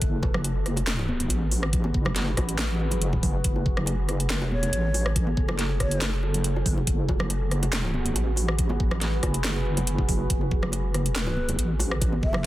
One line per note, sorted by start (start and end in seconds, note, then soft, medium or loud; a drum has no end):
0.00 1.28 F#1 loud
0.00 12.46 F#4 medium
0.00 12.46 G#4 medium
0.00 3.43 B4 loud
0.00 kick loud
0.00 closed hi-hat medium
0.23 kick loud
0.23 high bongo medium
0.34 cross-stick medium
0.34 low conga medium
0.44 closed hi-hat medium
0.44 high bongo medium
0.66 cross-stick medium
0.66 closed hi-hat medium
0.77 closed hi-hat soft
0.77 high bongo medium
0.87 snare loud
0.87 clap medium
0.87 closed hi-hat medium
0.99 high bongo soft
1.09 high conga medium
1.20 closed hi-hat medium
1.20 high conga medium
1.29 1.93 A1 medium
1.29 closed hi-hat medium
1.29 high bongo medium
1.51 open hi-hat medium
1.51 high bongo medium
1.63 cross-stick medium
1.73 kick loud
1.73 closed hi-hat medium
1.84 high bongo medium
1.84 high conga medium
1.94 2.36 F#1 loud
1.94 kick loud
2.05 cross-stick medium
2.05 high bongo soft
2.05 low conga loud
2.16 snare medium
2.16 closed hi-hat medium
2.37 3.21 A1 loud
2.37 kick medium
2.37 cross-stick medium
2.37 closed hi-hat soft
2.37 high bongo medium
2.49 closed hi-hat soft
2.59 snare loud
2.59 clap medium
2.59 closed hi-hat medium
2.59 high bongo soft
2.91 closed hi-hat soft
2.91 high bongo medium
2.91 low conga medium
3.02 closed hi-hat medium
3.13 kick medium
3.13 high bongo soft
3.23 3.43 F#1 medium
3.23 kick loud
3.23 open hi-hat medium
3.23 low conga medium
3.44 4.33 F#1 loud
3.44 6.86 A4 medium
3.44 kick loud
3.44 closed hi-hat medium
3.56 high bongo soft
3.66 kick loud
3.77 cross-stick medium
3.77 low conga medium
3.86 closed hi-hat medium
3.86 high bongo medium
4.08 cross-stick medium
4.08 closed hi-hat medium
4.08 high bongo medium
4.20 closed hi-hat soft
4.30 4.59 F1 loud
4.30 4.51 B4 medium
4.30 snare loud
4.30 clap medium
4.30 closed hi-hat medium
4.42 high bongo medium
4.51 5.12 C#5 medium
4.51 high conga medium
4.59 4.71 E1 loud
4.59 closed hi-hat soft
4.59 high bongo soft
4.59 high conga medium
4.73 5.36 A1 loud
4.73 closed hi-hat medium
4.94 open hi-hat medium
4.94 high bongo medium
5.06 cross-stick medium
5.16 kick loud
5.16 closed hi-hat medium
5.16 high bongo medium
5.27 high conga medium
5.37 6.64 F#1 loud
5.37 kick loud
5.48 cross-stick medium
5.48 high bongo medium
5.48 low conga medium
5.59 snare medium
5.59 closed hi-hat medium
5.69 high bongo soft
5.80 6.13 C#5 loud
5.80 kick medium
5.80 cross-stick medium
5.80 closed hi-hat medium
5.91 closed hi-hat medium
6.01 snare loud
6.01 clap medium
6.01 closed hi-hat medium
6.01 high bongo medium
6.23 high bongo medium
6.34 closed hi-hat medium
6.34 low conga medium
6.44 closed hi-hat medium
6.56 high bongo medium
6.66 6.86 F#1 loud
6.66 kick loud
6.66 open hi-hat loud
6.66 low conga medium
6.78 high bongo medium
6.87 8.14 F#1 loud
6.87 10.29 B4 loud
6.87 kick loud
6.87 closed hi-hat medium
7.09 kick loud
7.09 high bongo medium
7.19 cross-stick medium
7.19 low conga medium
7.30 closed hi-hat medium
7.30 high bongo medium
7.51 cross-stick medium
7.51 closed hi-hat medium
7.63 closed hi-hat medium
7.63 high bongo medium
7.73 snare loud
7.73 clap medium
7.73 closed hi-hat medium
7.84 high bongo medium
7.94 high conga medium
8.05 closed hi-hat medium
8.05 high conga medium
8.16 8.78 A1 loud
8.16 closed hi-hat medium
8.16 high bongo medium
8.36 open hi-hat loud
8.36 high bongo medium
8.48 cross-stick medium
8.59 kick loud
8.59 closed hi-hat medium
8.69 high bongo medium
8.69 high conga medium
8.80 9.21 A1 loud
8.80 kick loud
8.91 cross-stick medium
8.91 high bongo medium
8.91 low conga medium
9.01 snare medium
9.01 closed hi-hat medium
9.23 10.28 F#1 loud
9.23 kick medium
9.23 cross-stick medium
9.23 closed hi-hat medium
9.23 high bongo medium
9.34 closed hi-hat medium
9.44 snare loud
9.44 clap medium
9.44 closed hi-hat medium
9.44 high bongo medium
9.77 closed hi-hat medium
9.77 high bongo medium
9.77 high conga medium
9.77 low conga medium
9.87 closed hi-hat medium
9.98 kick medium
9.98 high bongo medium
10.09 kick loud
10.09 open hi-hat loud
10.09 low conga medium
10.30 11.57 F#1 medium
10.30 12.46 A4 medium
10.30 kick loud
10.30 closed hi-hat medium
10.41 high bongo medium
10.51 kick loud
10.62 cross-stick medium
10.62 low conga loud
10.72 closed hi-hat medium
10.72 high bongo medium
10.94 cross-stick soft
10.94 closed hi-hat medium
10.94 high bongo medium
11.06 closed hi-hat medium
11.16 11.48 B4 medium
11.16 snare loud
11.16 clap medium
11.16 closed hi-hat medium
11.27 high bongo medium
11.37 high conga medium
11.49 closed hi-hat medium
11.49 high bongo medium
11.49 high conga medium
11.59 12.21 A1 loud
11.59 closed hi-hat medium
11.79 open hi-hat loud
11.79 high bongo medium
11.91 cross-stick medium
12.01 kick loud
12.01 closed hi-hat medium
12.01 high bongo medium
12.12 high conga medium
12.23 12.46 F#1 loud
12.23 12.46 E5 loud
12.23 kick loud
12.33 cross-stick medium
12.33 high bongo medium
12.33 low conga loud